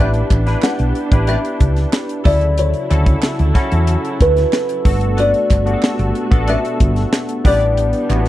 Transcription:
0.00 0.21 A1 loud
0.00 2.23 B3 medium
0.00 0.11 D4 medium
0.00 0.32 D4 medium
0.00 2.22 D4 medium
0.00 0.32 E4 medium
0.00 0.11 G4 medium
0.00 0.33 G4 medium
0.00 2.23 G4 medium
0.00 0.11 B4 medium
0.00 0.33 B4 medium
0.00 0.11 D5 medium
0.00 0.65 E5 medium
0.14 closed hi-hat medium
0.30 0.54 A1 medium
0.30 kick medium
0.30 clap medium
0.30 closed hi-hat medium
0.46 0.92 D4 medium
0.46 0.93 E4 medium
0.46 0.93 G4 medium
0.46 0.93 B4 medium
0.46 snare soft
0.46 closed hi-hat soft
0.62 1.30 F#5 loud
0.62 snare loud
0.62 clap medium
0.79 0.91 B1 medium
0.79 closed hi-hat soft
0.95 closed hi-hat medium
1.12 1.35 A1 medium
1.12 2.04 D4 medium
1.12 2.04 E4 medium
1.12 2.04 G4 medium
1.12 2.05 B4 medium
1.12 kick loud
1.12 closed hi-hat medium
1.27 1.38 D4 medium
1.27 1.38 G4 medium
1.27 1.39 B4 medium
1.27 1.38 D5 medium
1.27 2.29 E5 loud
1.27 closed hi-hat medium
1.45 closed hi-hat medium
1.60 1.84 C#2 medium
1.60 kick medium
1.60 closed hi-hat medium
1.76 snare soft
1.76 closed hi-hat soft
1.93 snare loud
1.93 clap medium
2.09 closed hi-hat medium
2.25 2.72 D2 medium
2.25 2.77 C#3 medium
2.25 4.83 C#3 medium
2.25 4.83 F#3 medium
2.25 2.46 E4 medium
2.25 2.77 E4 medium
2.25 4.83 E4 medium
2.25 2.78 F#4 medium
2.25 2.46 A4 medium
2.25 2.78 A4 medium
2.25 2.46 D5 medium
2.25 2.59 D5 medium
2.25 2.46 E5 loud
2.25 kick loud
2.25 open hi-hat medium
2.41 closed hi-hat soft
2.58 3.20 C#5 medium
2.58 closed hi-hat loud
2.74 closed hi-hat soft
2.90 3.14 D2 medium
2.90 3.36 C#4 medium
2.90 3.36 E4 medium
2.90 3.37 F#4 medium
2.90 3.37 A4 medium
2.90 clap medium
2.90 closed hi-hat medium
3.06 kick medium
3.06 closed hi-hat soft
3.23 snare loud
3.23 clap medium
3.39 3.51 D2 medium
3.39 closed hi-hat medium
3.54 4.47 C#4 medium
3.54 4.47 E4 medium
3.54 4.47 F#4 medium
3.54 4.47 A4 medium
3.54 kick loud
3.54 snare soft
3.54 closed hi-hat medium
3.72 3.95 E2 medium
3.72 closed hi-hat medium
3.87 closed hi-hat loud
4.05 closed hi-hat medium
4.21 4.44 D2 loud
4.21 5.15 B4 medium
4.21 kick medium
4.21 closed hi-hat medium
4.37 snare soft
4.37 closed hi-hat soft
4.53 snare medium
4.53 clap medium
4.69 closed hi-hat medium
4.85 5.32 G1 loud
4.85 7.42 B2 medium
4.85 7.42 A3 medium
4.85 5.50 B3 medium
4.85 5.50 D4 medium
4.85 5.50 F#4 medium
4.85 7.42 F#4 medium
4.85 5.51 A4 medium
4.85 kick loud
4.85 open hi-hat medium
5.01 closed hi-hat medium
5.17 5.31 D4 medium
5.17 5.31 A4 medium
5.17 5.31 B4 medium
5.17 5.31 D5 medium
5.17 6.45 D5 loud
5.17 closed hi-hat loud
5.34 closed hi-hat soft
5.50 5.74 G1 medium
5.50 kick medium
5.50 clap medium
5.50 closed hi-hat medium
5.66 6.12 B3 medium
5.66 6.12 D4 medium
5.66 6.12 F#4 medium
5.66 5.73 G4 medium
5.66 closed hi-hat soft
5.73 6.16 A4 medium
5.83 snare loud
5.83 clap medium
5.99 6.11 G1 medium
5.99 closed hi-hat soft
6.15 closed hi-hat medium
6.30 6.55 A1 medium
6.30 7.23 B3 medium
6.30 7.23 D4 medium
6.30 7.23 F#4 medium
6.30 7.24 A4 medium
6.30 kick loud
6.30 closed hi-hat soft
6.47 6.58 D4 medium
6.47 6.58 A4 medium
6.47 6.58 B4 medium
6.47 6.58 D5 medium
6.47 7.49 E5 loud
6.47 closed hi-hat medium
6.65 closed hi-hat medium
6.80 7.03 G1 medium
6.80 kick medium
6.80 closed hi-hat medium
6.96 snare soft
6.96 closed hi-hat medium
7.13 snare loud
7.13 clap medium
7.29 closed hi-hat medium
7.44 7.91 A1 loud
7.44 8.28 D3 medium
7.44 8.28 G3 medium
7.44 7.97 B3 medium
7.44 8.28 B3 medium
7.44 7.97 D4 medium
7.44 7.66 D4 loud
7.44 7.97 E4 medium
7.44 7.66 G4 medium
7.44 7.97 G4 medium
7.44 7.66 B4 medium
7.44 7.66 D5 loud
7.44 8.28 D5 medium
7.44 kick loud
7.44 open hi-hat medium
7.61 closed hi-hat soft
7.77 closed hi-hat medium
7.93 closed hi-hat soft
8.09 8.28 A1 medium
8.09 8.28 B3 medium
8.09 8.16 C#4 medium
8.09 8.28 E4 medium
8.09 8.28 F#4 medium
8.09 clap medium
8.09 closed hi-hat medium
8.16 8.28 D4 medium

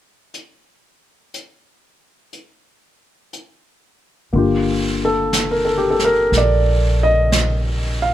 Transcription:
0.34 closed hi-hat soft
1.34 closed hi-hat soft
2.33 closed hi-hat soft
3.33 closed hi-hat soft
4.32 6.29 G1 medium
4.32 8.14 D3 soft
4.32 8.14 A#3 soft
4.32 8.14 F4 soft
4.32 brush sweep soft
4.38 5.76 G4 soft
5.05 5.55 A4 medium
5.33 brush sweep soft
5.33 snare soft
5.33 hi-hat pedal soft
5.51 5.63 A#4 soft
5.65 5.76 A4 soft
5.78 5.88 G4 soft
5.90 6.01 A4 soft
5.99 snare soft
6.05 6.35 A#4 medium
6.32 8.14 A#1 medium
6.32 brush sweep soft
6.32 snare soft
6.37 8.14 A#4 soft
6.37 6.97 D5 medium
7.03 8.03 D#5 medium
7.32 brush sweep soft
7.32 snare soft
7.32 hi-hat pedal soft
8.02 8.14 F5 medium

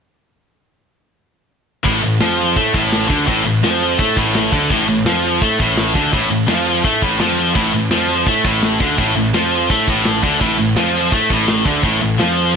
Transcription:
1.84 2.02 A1 medium
1.84 2.01 A2 loud
1.84 kick loud
1.84 crash medium
2.02 2.20 A1 medium
2.02 2.17 A2 medium
2.20 2.54 F2 loud
2.20 2.56 F3 loud
2.20 snare loud
2.20 crash medium
2.56 2.73 A2 medium
2.56 2.74 A3 loud
2.56 kick loud
2.56 crash medium
2.74 3.08 A1 medium
2.74 3.08 A2 medium
2.74 kick loud
2.93 snare loud
2.93 crash medium
3.08 3.26 D2 medium
3.08 3.26 D3 loud
3.08 kick loud
3.27 3.45 A1 medium
3.27 3.44 A2 medium
3.27 kick loud
3.27 crash medium
3.45 3.63 A1 medium
3.45 3.60 A2 medium
3.63 3.97 F2 loud
3.63 3.99 F3 loud
3.63 snare loud
3.63 crash medium
3.98 4.16 A2 medium
3.98 4.16 A3 loud
3.98 kick loud
3.98 crash medium
4.16 4.50 A1 medium
4.16 4.52 A2 loud
4.16 kick loud
4.35 snare loud
4.35 crash medium
4.53 4.70 D2 loud
4.53 4.70 D3 loud
4.53 kick loud
4.70 4.86 A1 medium
4.70 4.87 A2 loud
4.70 kick loud
4.70 crash medium
4.87 5.04 A1 medium
4.87 5.03 A2 medium
5.04 5.38 F2 loud
5.04 5.42 F3 loud
5.04 snare loud
5.04 crash medium
5.42 5.58 A2 loud
5.42 5.59 A3 loud
5.42 kick loud
5.42 crash medium
5.60 5.93 A1 loud
5.60 5.94 A2 loud
5.60 kick loud
5.77 snare loud
5.77 crash medium
5.95 6.12 D2 medium
5.95 6.12 D3 loud
5.95 kick loud
6.13 6.30 A1 loud
6.13 6.30 A2 loud
6.13 kick loud
6.13 crash medium
6.30 6.47 A1 medium
6.30 6.45 A2 medium
6.48 6.82 F2 medium
6.48 6.84 F3 loud
6.48 snare loud
6.48 crash medium
6.84 7.01 A2 medium
6.84 7.01 A3 loud
6.84 kick loud
6.84 crash medium
7.02 7.19 A1 medium
7.02 7.20 A2 loud
7.02 kick loud
7.20 7.54 F2 medium
7.20 7.54 F3 medium
7.20 snare loud
7.20 crash medium
7.54 7.72 A1 medium
7.54 7.73 A2 loud
7.54 kick loud
7.54 crash medium
7.74 7.91 A1 medium
7.74 7.91 A2 medium
7.91 8.25 F2 loud
7.91 8.27 F3 loud
7.91 snare loud
7.91 crash medium
8.26 8.43 A2 medium
8.26 8.45 A3 loud
8.26 kick loud
8.26 crash medium
8.45 8.78 A1 medium
8.45 8.80 A2 loud
8.45 kick loud
8.63 snare loud
8.63 crash medium
8.80 8.97 D2 loud
8.80 8.98 D3 loud
8.80 kick loud
8.98 9.15 A1 loud
8.98 9.15 A2 loud
8.98 kick loud
8.98 crash medium
9.16 9.33 A1 medium
9.16 9.31 A2 medium
9.34 9.67 F2 loud
9.34 9.69 F3 loud
9.34 snare loud
9.34 crash medium
9.70 9.87 A2 medium
9.70 9.88 A3 loud
9.70 kick loud
9.70 crash medium
9.88 10.21 A1 medium
9.88 10.23 A2 loud
9.88 kick loud
10.05 snare loud
10.05 crash medium
10.23 10.40 D2 loud
10.23 10.40 D3 loud
10.23 kick loud
10.41 10.58 A1 medium
10.41 10.58 A2 loud
10.41 kick loud
10.41 crash medium
10.59 10.75 A1 medium
10.59 10.77 A2 medium
10.76 11.10 F2 medium
10.76 11.12 F3 loud
10.76 snare loud
10.76 crash medium
11.12 11.29 A2 loud
11.12 11.31 A3 loud
11.12 kick loud
11.12 crash medium
11.30 11.64 A1 medium
11.30 11.66 A2 loud
11.30 kick loud
11.48 snare loud
11.48 crash medium
11.66 11.83 D2 medium
11.66 11.84 D3 loud
11.66 kick loud
11.83 12.00 A1 medium
11.83 12.00 A2 loud
11.83 kick loud
11.83 crash medium
12.01 12.19 A1 medium
12.01 12.16 A2 medium
12.18 12.53 F2 loud
12.18 12.54 F3 loud
12.18 snare loud
12.18 crash medium

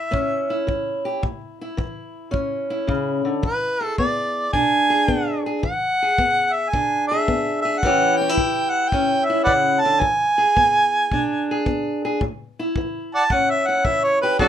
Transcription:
0.00 0.50 E4 medium
0.00 0.68 E5 medium
0.11 0.64 A2 medium
0.11 1.20 C#4 medium
0.11 kick medium
0.50 1.61 E4 medium
0.67 1.19 E3 medium
0.67 kick medium
1.05 1.21 G4 medium
1.23 1.74 A2 medium
1.23 kick medium
1.61 2.70 E4 medium
1.77 2.29 E3 medium
1.77 kick medium
2.31 2.84 A2 medium
2.31 3.40 C#4 medium
2.31 kick medium
2.70 4.54 E4 medium
2.87 3.24 C#3 medium
2.87 kick medium
3.25 3.43 D3 medium
3.43 3.94 E3 medium
3.43 3.95 B4 medium
3.43 kick medium
3.81 4.89 G#4 medium
3.98 4.50 B3 medium
3.98 4.49 D5 medium
3.98 kick medium
4.53 5.05 B2 medium
4.53 5.61 D4 medium
4.53 5.41 G#5 loud
4.53 kick medium
4.90 5.45 G#4 medium
5.08 5.59 B3 medium
5.08 kick medium
5.46 5.61 G#4 medium
5.62 6.14 E3 medium
5.62 6.54 F#5 medium
5.62 kick medium
6.02 7.10 G#4 medium
6.18 6.70 B3 medium
6.18 kick medium
6.53 6.71 E5 medium
6.70 7.25 B2 medium
6.70 7.81 D4 medium
6.70 7.07 G#5 medium
6.70 kick medium
7.08 7.64 G#4 medium
7.08 7.60 E5 medium
7.28 7.79 B3 medium
7.28 kick medium
7.61 7.80 G#4 medium
7.61 7.80 E5 medium
7.78 8.18 F#5 medium
7.83 8.34 A2 medium
7.83 8.39 E3 medium
7.83 8.20 C#4 medium
7.83 8.21 E4 medium
7.83 10.01 G4 medium
7.83 kick medium
8.16 8.72 G5 medium
8.21 8.29 C#4 medium
8.29 9.28 E4 medium
8.38 8.90 E3 medium
8.38 kick medium
8.70 8.90 F#5 medium
8.89 9.44 A2 medium
8.89 9.27 G5 loud
8.89 kick medium
8.93 10.00 C#4 medium
9.25 9.43 E5 medium
9.30 11.13 E4 medium
9.44 9.84 C#3 medium
9.44 9.52 B4 medium
9.44 9.53 D5 medium
9.44 9.82 F#5 medium
9.44 kick medium
9.81 10.02 A5 loud
9.85 10.02 D3 medium
10.00 10.52 E3 medium
10.00 11.65 G#5 loud
10.00 kick medium
10.38 11.48 G#4 medium
10.56 11.08 B3 medium
10.56 kick medium
11.12 11.63 B2 medium
11.12 12.20 D4 medium
11.12 kick medium
11.51 12.04 G#4 medium
11.66 12.17 B3 medium
11.66 kick medium
12.05 12.19 G#4 medium
12.21 12.72 A2 medium
12.21 kick medium
12.59 13.67 E4 medium
12.76 13.27 E3 medium
12.76 kick medium
13.15 13.23 D5 medium
13.15 13.24 F#5 medium
13.15 13.34 A5 loud
13.30 13.82 A2 medium
13.30 14.38 C#4 medium
13.30 13.52 F#5 medium
13.30 kick medium
13.50 13.68 E5 medium
13.67 14.38 E4 medium
13.67 13.86 F#5 medium
13.85 14.36 E3 medium
13.85 14.05 E5 medium
13.85 kick medium
14.04 14.21 C#5 medium
14.21 14.38 G4 medium
14.21 14.39 B4 medium
14.39 14.48 D3 medium
14.39 14.48 F#3 medium
14.39 14.48 C4 medium
14.39 14.46 D4 medium
14.39 14.48 D4 medium
14.39 14.46 F#4 medium
14.39 14.48 F#4 medium
14.39 14.48 A4 medium
14.39 kick medium

